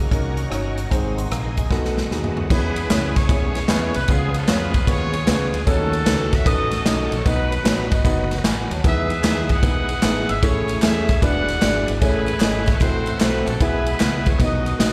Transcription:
Already playing: D#3 F#3 A#3 C#4 F#4 D#5 F#5 A#5 C#6
0.11 C2 C#4 D#4 F#4 A#4, kick, closed hi-hat
0.37 closed hi-hat
0.50 G1 C#4 D#4 F#4 C#5, cross-stick, closed hi-hat
0.78 closed hi-hat
0.90 G#1 G#2 C3 G#3 C4 D#4 G#4 C5 D#5 G#5 C6 D#6, kick, closed hi-hat
1.18 F#5 C6, closed hi-hat
1.31 A#1 F5 A#5, cross-stick, closed hi-hat
1.57 D#5 G#5, kick, cross-stick, closed hi-hat
1.70 B1 B2 F#3 A3 B3 D#4 F#4 A4 F#5 A5 B5, kick, snare
1.85 snare
1.97 snare
2.11 D#2 B3 D#4 F#4 G#4, snare
2.24 floor tom
2.37 floor tom
2.50 E2 E3 G#3 B3 C#4 E4 G#4 B4, kick, crash, tambourine
2.76 ride, tambourine
2.90 C#2 B3 C#4 E4 G#4 C#5, snare, clap, ride, tambourine
3.16 G#4 C#5, kick, snare, ride, tambourine
3.29 B1 B3 C#4 E4 G#4 C#5, kick, ride, tambourine
3.55 snare, ride, tambourine
3.68 E2 B3 C#4 E4 G#4 B4, snare, clap, ride, tambourine
3.94 C2 B4, ride, tambourine
4.08 C#2 C#3 F3 B3 C#4 F4 G#4 B4, kick, ride, tambourine
4.34 A4, ride, tambourine
4.47 F2 B3 C#4 F4 G#4 B4 C#5, snare, clap, ride, tambourine
4.74 kick, ride, tambourine
4.87 D#2 B3 C#4 F4 G#4 B4 C#5, kick, ride, tambourine
5.13 ride, tambourine
5.27 C#2 B3 C#4 F4 G#4 B4, snare, clap, ride, tambourine
5.54 D2, ride, tambourine
5.66 D#2 D#3 A3 C#4 D#4 F#4 A4 C#5, kick, ride, tambourine
5.93 ride, tambourine
6.06 C#2 C#4 D#4 F#4 A4 B4, snare, clap, ride, tambourine
6.32 E5, kick, snare, ride, tambourine
6.45 A1 C#4 D#4 F#4 A4 B4 D#5, kick, ride, tambourine
6.71 snare, ride, tambourine
6.85 B1 C#4 D#4 F#4 A4 D#5, snare, clap, ride, tambourine
7.12 A#1 C#5, ride, tambourine
7.25 B1 B2 F#3 B3 D#4 F#4 B4 D#5, kick, ride, tambourine
7.52 ride, tambourine
7.64 A1 B3 D#4 F#4 B4 C#5, snare, clap, ride, tambourine
7.91 G#1 D#5, kick, ride, tambourine
8.04 F#1 B3 D#4 F#4 B4 D#5 F#5, kick, ride, tambourine
8.31 snare, ride, tambourine
8.44 A1 F#5 G#5 B5, snare, clap, ride, tambourine
8.71 D#2 C#5 F#5 A5, ride, tambourine
8.84 E2 E3 G#3 B3 D#4 E4 G#4 B4 E5, kick, ride, tambourine
9.10 ride, tambourine
9.23 D#2 B3 D#4 E4 G#4 B4 E5, snare, clap, ride, tambourine
9.49 B4 D#5 F#5, kick, ride, tambourine
9.62 B1 B3 D#4 E4 G#4 B4, kick, ride, tambourine
9.89 ride, tambourine
10.02 A1 B3 D#4 E4 G#4 B4, snare, clap, ride, tambourine
10.29 G#1 E5, ride, tambourine
10.42 A1 A2 A3 C#4 E4 G#4 A4 C#5, kick, ride, tambourine
10.68 ride, tambourine
10.82 E2 C#4 E4 G#4 A4 C#5 E5, snare, clap, ride, tambourine
11.09 kick, snare, ride, tambourine
11.22 E1 E3 B3 D4 E4 F#4 G#4 B4 D5 F#5, kick, ride, tambourine
11.48 snare, ride, tambourine
11.61 G#1 D4 E4 F#4 G#4 D5, snare, clap, ride, tambourine
11.88 G#1, ride, tambourine
12.01 A1 A2 E3 A3 C#4 E4 G#4 A4 B4 C#5, kick, ride, tambourine
12.26 ride, tambourine
12.40 G#1 C#4 E4 G#4 A4 D#5, snare, clap, ride, tambourine
12.66 C#5, kick, snare, ride, tambourine
12.75 B4
12.80 A1 A2 F#3 C4 E4 F#4 A4 C5, kick, ride, tambourine
13.06 ride, tambourine
13.20 B1 C4 E4 F#4 A4 B4 C5, snare, clap, ride, tambourine
13.46 A#1 A4, ride, tambourine
13.60 B1 B2 E3 G#3 B3 E4 G#4 B4 E5, kick, ride, tambourine
13.86 ride, tambourine
13.99 C#2 B3 E4 G#4 B4 E5, snare, clap, ride, tambourine
14.26 C#5, kick, ride, tambourine
14.38 B1 B2 D#3 F#3 B3 D#4 F#4 B4 D#5, kick, ride, tambourine
14.66 ride, tambourine
14.79 A1 B3 D#4 F#4 B4 D#5, snare, clap, ride, tambourine

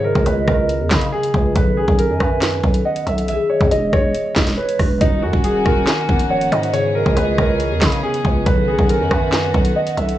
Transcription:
Already playing: G#2 C#3 B3 C#4 E4 F#4, downlifter
0.04 A#4 D#5
0.15 C#2, kick
0.26 C#2 B4, closed hi-hat
0.48 C#2 A#4, kick, cross-stick
0.69 closed hi-hat
0.80 E2
0.91 C#3, kick, snare, clap, closed hi-hat
1.01 closed hi-hat
1.11 C#3 B3 E4 G#4
1.23 closed hi-hat
1.34 C#2, kick
1.52 B1 D#3 B3 B4, kick, closed hi-hat
1.59 C#4
1.77 G#4 G#5
1.88 B1, kick
1.98 A#4, closed hi-hat
2.10 F#2
2.20 F#2 B4, kick, cross-stick
2.42 snare, clap, closed hi-hat
2.64 B1, kick
2.74 closed hi-hat
2.85 D#5 F#5
2.96 closed hi-hat
3.07 B1 E5, closed hi-hat
3.18 closed hi-hat
3.25 E3 B3 E5, closed hi-hat
3.32 G#4
3.50 C#5 D#5
3.61 E2, kick
3.71 E1 D#5, closed hi-hat
3.93 E1 C#5, kick, cross-stick
4.15 closed hi-hat
4.36 E1, kick, snare, clap, closed hi-hat
4.47 snare, closed hi-hat
4.58 B4 C#5
4.69 closed hi-hat
4.79 E1 B4, kick, cross-stick, open hi-hat
4.97 D#1 D#3 A#3 C#4 D#4 F#4, kick, closed hi-hat
5.04 F#4
5.22 F#2 F#4 G#5
5.33 D#1, kick
5.44 G#4, closed hi-hat
5.66 D#1 A#4, kick, cross-stick
5.87 snare, clap, closed hi-hat
6.07 C#1 D#3 C#4 F#4, kick
6.19 closed hi-hat
6.30 C#5 F#5
6.41 closed hi-hat
6.52 G#2 D#5 E5, closed hi-hat
6.63 closed hi-hat
6.70 C#3 E3 B3 G#4 C#5, closed hi-hat
6.77 E4
6.95 A#4 D#5
7.06 C#2, kick
7.17 C#2 B4, closed hi-hat
7.38 C#2 A#4, kick, cross-stick
7.60 closed hi-hat
7.71 E2
7.81 C#3, kick, snare, clap, closed hi-hat
7.92 closed hi-hat
8.01 C#3 B3 E4 G#4
8.14 closed hi-hat
8.25 C#2, kick
8.43 B1 D#3 B3 F#4 B4, kick, closed hi-hat
8.50 C#4
8.68 G#4 G#5
8.79 B1, kick
8.89 A#4, closed hi-hat
9.00 F#2
9.11 F#2 B4, kick, cross-stick
9.32 snare, clap, closed hi-hat
9.54 B1, kick
9.65 closed hi-hat
9.76 D#5 F#5
9.87 closed hi-hat
9.97 B1 E5, closed hi-hat
10.09 closed hi-hat

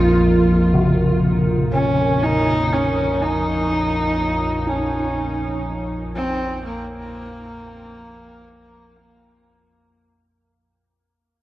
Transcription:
Already playing: A#1 F2 A#3 F4 A#4 F5
0.74 C#3
1.73 C#4
2.23 D#4
2.73 C#4
3.21 D#4
4.67 C#4 D#4
6.16 C4
6.65 A#3

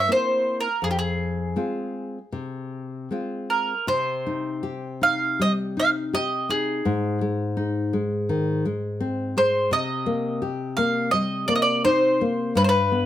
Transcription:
0.08 A#3 C4 E4 C5
0.60 A#4
0.82 F2 G#4
0.91 G4
0.99 G#4
1.56 G#3 C4 F4
2.32 C3
3.11 G#3 C4 F4
3.50 A#4
3.87 C3 C5
4.27 D#4
4.63 G4
5.01 D#4 F5
5.39 G3 D#5
5.77 D#4 F5
6.13 G4 D#5
6.49 D#4 G#4
6.85 G#2
7.21 G#3
7.57 D#4
7.93 G#3
8.29 D#3
8.65 G#3
9.00 C4
9.37 G#3 C5
9.71 C3 D#5
10.06 A#3
10.42 G4
10.77 A#3 F5
11.11 G3 D#5
11.48 A#3 D5
11.56 D#5
11.62 D5
11.85 D#4 C5
12.21 A#3
12.55 G2 B4
12.64 C5
12.69 B4
12.92 B3

